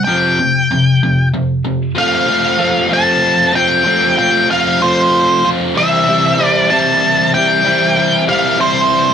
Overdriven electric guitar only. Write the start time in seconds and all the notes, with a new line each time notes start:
0.07 F2 C3 F3
0.39 F2 C3
0.71 F2 C3
1.03 F2 C3
1.34 F2 C3
1.64 F2 C3
1.95 F3 A3 C4 F4
2.27 A3 C4 F4
2.58 F3 A3 C4 F4
2.89 F3 A3 C4 F4
3.53 A3 C4 F4
3.84 F3 A3 C4 F4
4.17 A3 C4 F4
4.50 F3 A3 C4 F4
4.81 F3 A3 C4 F4
5.45 A3 C4 F4
5.74 C3 E3 G3 C4 E4
6.07 G3 C4 E4
6.38 E3 G3 C4 E4
6.70 C3 E3 G3 C4 E4
7.34 G3 C4 E4
7.64 C3 E3 G3 C4 E4
7.96 G3 C4 E4
8.27 E3 G3 C4 E4
8.58 C3 E3 G3 C4 E4